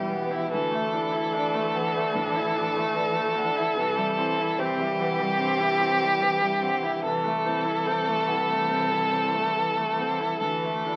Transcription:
0.00 0.54 E1 medium
0.00 0.55 B2 medium
0.00 0.48 E3 medium
0.00 0.12 G3 medium
0.00 0.55 E4 medium
0.00 0.51 G4 medium
0.00 0.56 B4 medium
0.00 0.33 E5 medium
0.00 0.13 F#5 medium
0.10 0.32 B3 medium
0.10 0.33 F#5 medium
0.31 0.50 E4 medium
0.31 0.53 E5 medium
0.50 3.79 D2 medium
0.50 2.12 D2 medium
0.50 0.73 E3 medium
0.50 3.73 E3 medium
0.50 4.61 A4 medium
0.71 0.94 A3 medium
0.71 1.06 E5 medium
0.93 1.14 D4 medium
0.93 1.26 E4 medium
1.12 1.35 E4 medium
1.12 1.46 E5 medium
1.33 1.56 D4 medium
1.33 1.67 D5 medium
1.55 1.76 A3 medium
1.55 1.87 E5 medium
1.74 1.97 E3 medium
1.74 1.95 F#5 medium
1.95 2.15 A3 medium
1.95 2.28 E5 medium
2.15 2.48 A2 medium
2.15 2.37 D4 medium
2.36 2.57 E4 medium
2.36 2.68 E5 medium
2.55 2.77 D4 medium
2.55 2.88 E4 medium
2.76 2.97 A3 medium
2.76 3.09 E5 medium
2.95 3.17 E3 medium
2.95 3.29 D5 medium
3.15 3.37 A3 medium
3.15 3.49 E5 medium
3.36 3.58 D4 medium
3.36 3.57 F#5 medium
3.56 3.77 E4 medium
3.56 3.77 E5 medium
3.76 5.35 C2 medium
3.76 7.04 C2 medium
3.76 7.00 E3 medium
3.76 3.99 E3 medium
3.96 4.19 G3 medium
3.96 4.30 E5 medium
4.17 4.41 C4 medium
4.17 4.50 E4 medium
4.38 4.61 E4 medium
4.38 4.71 E5 medium
4.58 4.81 C4 medium
4.58 7.04 G4 loud
4.58 4.91 C5 medium
4.79 5.01 G3 medium
4.79 5.11 E5 medium
5.00 5.22 E3 medium
5.00 5.20 F#5 medium
5.20 5.39 G3 medium
5.20 5.52 E5 medium
5.39 5.72 G2 medium
5.39 5.60 C4 medium
5.58 5.81 E4 medium
5.58 5.93 E5 medium
5.79 6.02 C4 medium
5.79 6.14 E4 medium
6.01 6.22 G3 medium
6.01 6.35 E5 medium
6.20 6.42 E3 medium
6.20 6.55 C5 medium
6.41 6.63 G3 medium
6.41 6.75 E5 medium
6.61 6.84 C4 medium
6.61 6.84 F#5 medium
6.83 7.03 E4 medium
6.83 7.04 E5 medium
7.04 8.66 C2 medium
7.04 10.42 C2 medium
7.04 7.25 E3 medium
7.04 10.38 E3 medium
7.04 10.38 A4 medium
7.24 7.47 A3 medium
7.24 7.58 E5 medium
7.45 7.66 C4 medium
7.45 7.78 E4 medium
7.65 7.88 E4 medium
7.65 7.99 E5 medium
7.86 8.09 C4 medium
7.86 8.20 A4 medium
8.07 8.29 A3 medium
8.07 8.41 E5 medium
8.27 8.50 E3 medium
8.27 8.48 F#5 medium
8.49 8.68 A3 medium
8.49 8.82 E5 medium
8.69 10.37 C2 medium
8.69 8.92 C4 medium
8.90 9.12 E4 medium
8.90 9.24 A4 medium
9.11 9.35 C4 medium
9.11 9.46 E4 medium
9.33 9.56 A3 medium
9.33 9.67 E5 medium
9.53 9.78 E3 medium
9.53 9.89 A4 medium
9.76 10.00 A3 medium
9.76 10.11 E5 medium
9.97 10.22 C4 medium
9.97 10.19 F#5 soft
10.19 10.41 E4 medium
10.19 10.42 E5 medium
10.40 10.96 D2 medium
10.40 10.64 E3 medium
10.40 10.96 E3 medium
10.40 10.96 A4 medium
10.62 10.87 A3 medium
10.62 10.96 E5 medium
10.85 10.96 D4 medium
10.85 10.96 E4 medium

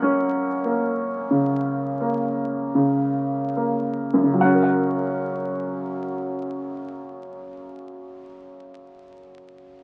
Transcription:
0.00 4.12 F#2 soft
0.00 0.63 A#3 soft
0.00 2.73 C#4 soft
0.00 2.72 A#4 soft
0.00 2.72 F#5 medium
0.65 1.99 A#3 soft
1.31 2.74 C#3 soft
2.01 3.55 A#3 soft
2.75 4.22 C#3 soft
3.57 4.37 A#3 soft
4.14 8.18 F#2 soft
4.23 8.27 C#3 soft
4.34 8.38 F#3 soft
4.41 8.47 C#4 soft
4.41 4.62 F#5 soft
4.54 8.58 A#4 soft
4.63 8.67 F#5 soft

